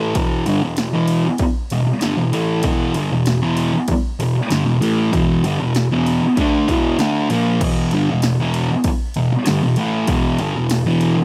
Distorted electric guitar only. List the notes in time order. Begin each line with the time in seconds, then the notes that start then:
Already playing: A2 E3 A3
0.15 E2 B2 E3
0.47 G2 D3
0.63 E2 B2
0.93 E2 B2 E3
1.25 muted distorted electric guitar stroke
1.41 muted distorted electric guitar stroke
1.72 E2 B2
1.87 muted distorted electric guitar stroke
2.02 G2 D3
2.18 E2 B2
2.33 A2 E3 A3
2.65 E2 B2 E3
2.95 G2 D3
3.12 E2 B2
3.42 E2 B2 E3
3.73 muted distorted electric guitar stroke
3.90 muted distorted electric guitar stroke
4.20 E2 B2
4.35 muted distorted electric guitar stroke
4.51 G2 D3
4.66 E2 B2
4.80 A2 E3 A3
5.12 E2 B2 E3
5.44 G2 D3
5.60 E2 B2
5.92 E2 B2 E3
6.23 muted distorted electric guitar stroke
6.38 D3 A3 D4
6.68 E2 B2 E3
6.99 D3 A3 D4
7.30 A#2 F3 A#3
7.61 E2 B2 E3
7.93 G2 D3
8.10 E2 B2
8.40 E2 B2 E3
8.71 muted distorted electric guitar stroke
8.86 muted distorted electric guitar stroke
9.16 E2 B2
9.32 muted distorted electric guitar stroke
9.47 G2 D3
9.63 E2 B2
9.78 A2 E3 A3
10.08 E2 B2 E3
10.40 G2 D3
10.56 E2 B2
10.86 E2 B2 E3
11.17 muted distorted electric guitar stroke